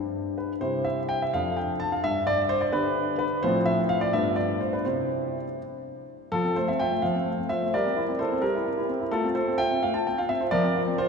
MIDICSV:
0, 0, Header, 1, 2, 480
1, 0, Start_track
1, 0, Key_signature, 0, "major"
1, 0, Tempo, 471698
1, 623, Time_signature, 6, 3, 24, 8
1, 4451, Tempo, 484262
1, 6376, Key_signature, -1, "major"
1, 6851, Tempo, 466200
1, 11268, End_track
2, 0, Start_track
2, 0, Title_t, "Grand piano"
2, 0, Program_c, 0, 0
2, 0, Note_on_c, 0, 43, 46
2, 0, Note_on_c, 0, 55, 31
2, 0, Note_on_c, 0, 62, 27
2, 0, Note_on_c, 0, 67, 32
2, 384, Note_on_c, 0, 71, 50
2, 529, Note_off_c, 0, 71, 0
2, 587, Note_off_c, 0, 55, 0
2, 590, Note_off_c, 0, 67, 0
2, 591, Note_off_c, 0, 62, 0
2, 606, Note_off_c, 0, 43, 0
2, 620, Note_on_c, 0, 72, 73
2, 623, Note_on_c, 0, 48, 50
2, 626, Note_on_c, 0, 55, 36
2, 632, Note_on_c, 0, 64, 34
2, 635, Note_on_c, 0, 67, 35
2, 860, Note_on_c, 0, 76, 72
2, 865, Note_off_c, 0, 72, 0
2, 1009, Note_off_c, 0, 76, 0
2, 1106, Note_on_c, 0, 79, 76
2, 1230, Note_off_c, 0, 79, 0
2, 1245, Note_on_c, 0, 76, 65
2, 1315, Note_off_c, 0, 55, 0
2, 1317, Note_off_c, 0, 64, 0
2, 1319, Note_off_c, 0, 67, 0
2, 1332, Note_off_c, 0, 48, 0
2, 1359, Note_on_c, 0, 77, 76
2, 1360, Note_off_c, 0, 76, 0
2, 1365, Note_on_c, 0, 41, 49
2, 1365, Note_on_c, 0, 53, 38
2, 1371, Note_on_c, 0, 62, 33
2, 1376, Note_on_c, 0, 69, 38
2, 1595, Note_on_c, 0, 79, 62
2, 1597, Note_off_c, 0, 77, 0
2, 1738, Note_off_c, 0, 79, 0
2, 1828, Note_on_c, 0, 81, 79
2, 1950, Note_off_c, 0, 81, 0
2, 1956, Note_on_c, 0, 77, 67
2, 2037, Note_off_c, 0, 53, 0
2, 2039, Note_off_c, 0, 62, 0
2, 2042, Note_off_c, 0, 69, 0
2, 2056, Note_off_c, 0, 41, 0
2, 2073, Note_off_c, 0, 77, 0
2, 2073, Note_on_c, 0, 76, 88
2, 2078, Note_on_c, 0, 43, 54
2, 2307, Note_on_c, 0, 74, 89
2, 2310, Note_off_c, 0, 76, 0
2, 2450, Note_off_c, 0, 74, 0
2, 2536, Note_on_c, 0, 72, 93
2, 2656, Note_on_c, 0, 74, 76
2, 2659, Note_off_c, 0, 72, 0
2, 2764, Note_off_c, 0, 43, 0
2, 2773, Note_on_c, 0, 71, 82
2, 2777, Note_on_c, 0, 50, 47
2, 2778, Note_off_c, 0, 74, 0
2, 2780, Note_on_c, 0, 62, 44
2, 2784, Note_on_c, 0, 67, 45
2, 3208, Note_off_c, 0, 71, 0
2, 3242, Note_on_c, 0, 71, 78
2, 3290, Note_off_c, 0, 50, 0
2, 3291, Note_off_c, 0, 62, 0
2, 3294, Note_off_c, 0, 67, 0
2, 3485, Note_off_c, 0, 71, 0
2, 3487, Note_on_c, 0, 72, 91
2, 3493, Note_on_c, 0, 45, 66
2, 3499, Note_on_c, 0, 53, 46
2, 3506, Note_on_c, 0, 60, 49
2, 3513, Note_on_c, 0, 65, 50
2, 3630, Note_off_c, 0, 72, 0
2, 3721, Note_on_c, 0, 76, 87
2, 3866, Note_off_c, 0, 76, 0
2, 3959, Note_on_c, 0, 77, 81
2, 4083, Note_off_c, 0, 77, 0
2, 4083, Note_on_c, 0, 74, 83
2, 4170, Note_off_c, 0, 53, 0
2, 4174, Note_off_c, 0, 60, 0
2, 4178, Note_off_c, 0, 65, 0
2, 4187, Note_off_c, 0, 45, 0
2, 4205, Note_off_c, 0, 74, 0
2, 4205, Note_on_c, 0, 76, 76
2, 4211, Note_on_c, 0, 57, 40
2, 4213, Note_on_c, 0, 43, 60
2, 4218, Note_on_c, 0, 59, 42
2, 4221, Note_on_c, 0, 65, 42
2, 4424, Note_off_c, 0, 76, 0
2, 4436, Note_on_c, 0, 74, 68
2, 4680, Note_off_c, 0, 74, 0
2, 4681, Note_on_c, 0, 72, 61
2, 4803, Note_off_c, 0, 72, 0
2, 4805, Note_on_c, 0, 71, 59
2, 4888, Note_off_c, 0, 57, 0
2, 4892, Note_off_c, 0, 59, 0
2, 4893, Note_off_c, 0, 65, 0
2, 4907, Note_off_c, 0, 43, 0
2, 4922, Note_on_c, 0, 72, 61
2, 4925, Note_off_c, 0, 71, 0
2, 4926, Note_on_c, 0, 64, 32
2, 4929, Note_on_c, 0, 60, 38
2, 4931, Note_on_c, 0, 48, 45
2, 5436, Note_off_c, 0, 48, 0
2, 5505, Note_off_c, 0, 64, 0
2, 5507, Note_off_c, 0, 60, 0
2, 5648, Note_off_c, 0, 72, 0
2, 6377, Note_on_c, 0, 69, 89
2, 6380, Note_on_c, 0, 53, 52
2, 6388, Note_on_c, 0, 65, 61
2, 6493, Note_off_c, 0, 53, 0
2, 6497, Note_on_c, 0, 60, 44
2, 6603, Note_off_c, 0, 65, 0
2, 6613, Note_off_c, 0, 69, 0
2, 6620, Note_off_c, 0, 60, 0
2, 6620, Note_on_c, 0, 72, 81
2, 6630, Note_on_c, 0, 57, 46
2, 6735, Note_off_c, 0, 72, 0
2, 6738, Note_on_c, 0, 76, 66
2, 6746, Note_off_c, 0, 57, 0
2, 6746, Note_on_c, 0, 60, 46
2, 6850, Note_on_c, 0, 79, 81
2, 6851, Note_off_c, 0, 76, 0
2, 6861, Note_on_c, 0, 65, 50
2, 6863, Note_off_c, 0, 60, 0
2, 6866, Note_on_c, 0, 76, 64
2, 6971, Note_on_c, 0, 57, 39
2, 6984, Note_off_c, 0, 65, 0
2, 7084, Note_on_c, 0, 77, 70
2, 7086, Note_off_c, 0, 76, 0
2, 7092, Note_on_c, 0, 53, 49
2, 7094, Note_off_c, 0, 79, 0
2, 7099, Note_off_c, 0, 57, 0
2, 7102, Note_on_c, 0, 72, 56
2, 7211, Note_off_c, 0, 53, 0
2, 7216, Note_on_c, 0, 60, 37
2, 7332, Note_on_c, 0, 57, 41
2, 7342, Note_off_c, 0, 60, 0
2, 7460, Note_off_c, 0, 57, 0
2, 7461, Note_on_c, 0, 60, 41
2, 7547, Note_off_c, 0, 72, 0
2, 7570, Note_on_c, 0, 76, 76
2, 7572, Note_off_c, 0, 77, 0
2, 7575, Note_on_c, 0, 65, 42
2, 7580, Note_on_c, 0, 72, 53
2, 7585, Note_off_c, 0, 60, 0
2, 7700, Note_on_c, 0, 57, 45
2, 7702, Note_off_c, 0, 65, 0
2, 7803, Note_off_c, 0, 72, 0
2, 7814, Note_off_c, 0, 76, 0
2, 7819, Note_off_c, 0, 57, 0
2, 7823, Note_on_c, 0, 74, 77
2, 7830, Note_on_c, 0, 55, 61
2, 7836, Note_on_c, 0, 70, 63
2, 7941, Note_off_c, 0, 55, 0
2, 7942, Note_on_c, 0, 60, 44
2, 8054, Note_on_c, 0, 64, 52
2, 8066, Note_off_c, 0, 60, 0
2, 8109, Note_off_c, 0, 74, 0
2, 8181, Note_on_c, 0, 60, 47
2, 8182, Note_off_c, 0, 64, 0
2, 8273, Note_off_c, 0, 70, 0
2, 8287, Note_on_c, 0, 72, 76
2, 8295, Note_on_c, 0, 64, 47
2, 8305, Note_off_c, 0, 60, 0
2, 8306, Note_on_c, 0, 69, 65
2, 8420, Note_on_c, 0, 60, 42
2, 8421, Note_off_c, 0, 64, 0
2, 8519, Note_on_c, 0, 70, 75
2, 8523, Note_off_c, 0, 69, 0
2, 8524, Note_on_c, 0, 55, 50
2, 8531, Note_off_c, 0, 72, 0
2, 8531, Note_on_c, 0, 67, 60
2, 8543, Note_off_c, 0, 60, 0
2, 8645, Note_off_c, 0, 55, 0
2, 8657, Note_on_c, 0, 64, 44
2, 8771, Note_on_c, 0, 60, 40
2, 8781, Note_off_c, 0, 64, 0
2, 8887, Note_on_c, 0, 64, 49
2, 8899, Note_off_c, 0, 60, 0
2, 8956, Note_off_c, 0, 70, 0
2, 9007, Note_on_c, 0, 60, 48
2, 9017, Note_off_c, 0, 64, 0
2, 9128, Note_on_c, 0, 64, 45
2, 9137, Note_off_c, 0, 60, 0
2, 9212, Note_off_c, 0, 67, 0
2, 9239, Note_on_c, 0, 69, 83
2, 9242, Note_on_c, 0, 57, 54
2, 9249, Note_on_c, 0, 65, 62
2, 9252, Note_off_c, 0, 64, 0
2, 9366, Note_off_c, 0, 57, 0
2, 9367, Note_on_c, 0, 60, 48
2, 9389, Note_off_c, 0, 69, 0
2, 9467, Note_off_c, 0, 65, 0
2, 9480, Note_on_c, 0, 72, 77
2, 9482, Note_on_c, 0, 65, 50
2, 9488, Note_on_c, 0, 69, 69
2, 9498, Note_off_c, 0, 60, 0
2, 9612, Note_on_c, 0, 60, 51
2, 9616, Note_off_c, 0, 65, 0
2, 9717, Note_off_c, 0, 69, 0
2, 9717, Note_on_c, 0, 79, 88
2, 9719, Note_on_c, 0, 65, 52
2, 9729, Note_on_c, 0, 76, 61
2, 9730, Note_off_c, 0, 72, 0
2, 9742, Note_off_c, 0, 60, 0
2, 9855, Note_off_c, 0, 65, 0
2, 9856, Note_on_c, 0, 60, 46
2, 9957, Note_off_c, 0, 76, 0
2, 9968, Note_off_c, 0, 79, 0
2, 9972, Note_on_c, 0, 77, 74
2, 9983, Note_off_c, 0, 60, 0
2, 9984, Note_on_c, 0, 57, 45
2, 10088, Note_on_c, 0, 81, 69
2, 10094, Note_on_c, 0, 65, 46
2, 10095, Note_off_c, 0, 77, 0
2, 10098, Note_off_c, 0, 57, 0
2, 10213, Note_off_c, 0, 81, 0
2, 10222, Note_off_c, 0, 65, 0
2, 10222, Note_on_c, 0, 79, 62
2, 10226, Note_on_c, 0, 60, 47
2, 10339, Note_on_c, 0, 77, 68
2, 10340, Note_off_c, 0, 79, 0
2, 10342, Note_on_c, 0, 65, 55
2, 10348, Note_off_c, 0, 60, 0
2, 10449, Note_on_c, 0, 76, 81
2, 10455, Note_on_c, 0, 60, 44
2, 10458, Note_off_c, 0, 77, 0
2, 10466, Note_off_c, 0, 65, 0
2, 10566, Note_on_c, 0, 72, 63
2, 10570, Note_on_c, 0, 65, 47
2, 10573, Note_off_c, 0, 76, 0
2, 10582, Note_off_c, 0, 60, 0
2, 10677, Note_on_c, 0, 74, 89
2, 10686, Note_on_c, 0, 53, 70
2, 10691, Note_off_c, 0, 72, 0
2, 10692, Note_on_c, 0, 70, 72
2, 10693, Note_off_c, 0, 65, 0
2, 10806, Note_off_c, 0, 53, 0
2, 10811, Note_on_c, 0, 60, 54
2, 10928, Note_on_c, 0, 65, 52
2, 10938, Note_off_c, 0, 60, 0
2, 10968, Note_off_c, 0, 74, 0
2, 11052, Note_on_c, 0, 60, 52
2, 11056, Note_off_c, 0, 65, 0
2, 11136, Note_off_c, 0, 70, 0
2, 11163, Note_on_c, 0, 72, 89
2, 11169, Note_on_c, 0, 65, 60
2, 11177, Note_off_c, 0, 60, 0
2, 11268, Note_off_c, 0, 65, 0
2, 11268, Note_off_c, 0, 72, 0
2, 11268, End_track
0, 0, End_of_file